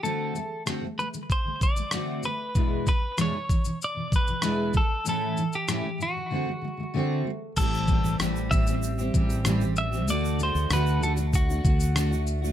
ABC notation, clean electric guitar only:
X:1
M:4/4
L:1/16
Q:1/4=96
K:D
V:1 name="Clean electric guitar"
A4 z2 B2 =c2 d4 B2- | B2 B2 c4 d2 B4 A2 | A3 G3 F8 z2 | [K:Ador] A4 z2 e8 e2 |
d2 c2 B2 A2 F6 z2 |]